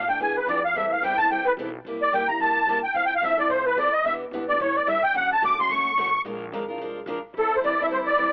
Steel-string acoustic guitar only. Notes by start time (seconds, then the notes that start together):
0.08 A3 D4 A4
0.20 E3 B3 D4 G#4
0.48 E3 B3 D4 G#4
0.75 E3 G3 C4 E4 A4
1.03 E3 G3 C4 E4 A4
1.18 C4 E4 A4
1.31 E3 G3 C4 E4 A4
1.59 E3 G3 C4 E4 A4
1.86 C3 G3 A#3 E4 G4
2.13 C3 G3 A#3 E4 G4
2.28 A#3 E4 G4
2.40 C3 G3 A#3 E4 G4
2.68 C3 G3 A#3 E4 G4
2.95 F3 C4 E4 A4
3.22 F3 C4 E4 A4
3.37 C4 E4 A4
3.50 F3 C4 E4 A4
3.77 F3 C4 E4 A4
4.05 E3 B3 D4 G4
4.33 E3 B3 D4 G4
4.49 B3 D4 G4
4.60 E3 G3 C#4 E4 A4
4.87 E3 G3 C#4 E4 A4
5.15 D3 F#3 A3 C#4 F#4
5.42 D3 F#3 A3 C#4 F#4
5.59 A3 C#4 F#4
5.71 D3 F#3 A3 C#4 F#4
5.98 D3 F#3 A3 C#4 F#4
6.25 F3 G#3 D4 F4 A#4
6.53 F3 G#3 D4 F4 A#4
6.68 D4 F4 A#4
6.81 F3 G#3 D4 F4 A#4
7.07 F3 G#3 D4 F4 A#4
7.37 E3 G3 C4 E4 A4
7.63 E3 G3 C4 E4 A4
7.79 C4 E4 A4
7.91 E3 G3 C4 E4 A4
8.18 E3 G3 C4 E4 A4